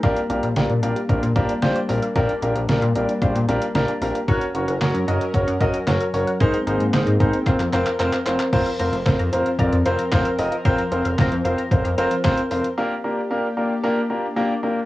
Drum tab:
CC |----------------|----------------|----------------|----------------|
HH |xxxxxxxxxxxxxxox|xxxxxxxxxxxxxxox|xxxxxxxxxxxxxxox|xxxxxxxxxxxxxxxx|
CP |----------------|----------------|----x-------x---|----x---xxxxxxxx|
SD |----o-------o---|----o-------o---|----o-------o---|----o-----------|
BD |o-------o-o-----|o-------o-------|o-------o-o-----|o-----o-o-------|

CC |x---------------|----------------|----------------|
HH |xxxxxxxxxxxxxxox|xxxxxxxxxxxxxxox|----------------|
CP |----x-------x---|----x-------x---|----------------|
SD |----o-------o---|----o-------o---|----------------|
BD |o---o---o---o---|o---o---o---o---|----------------|